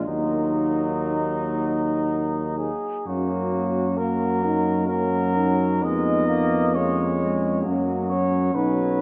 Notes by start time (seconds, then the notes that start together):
0.07 D#2 F#3 A#3 D#4
2.58 G#4
3.06 F#2 A#3 C#4 F#4
3.53 A#3
3.97 F#3 A#3 A#4
4.44 D#4
4.87 F#3 A#3 C#4 A#4
5.36 D#4
5.83 F2 G#3 B3 D#5
6.28 A#3
6.74 G#3 A#3 C#4 C#5
7.23 G#3
7.64 F#2 F#3 A#3 C#4
8.09 C#4 C#5
8.54 B1 F#3 D#4 B4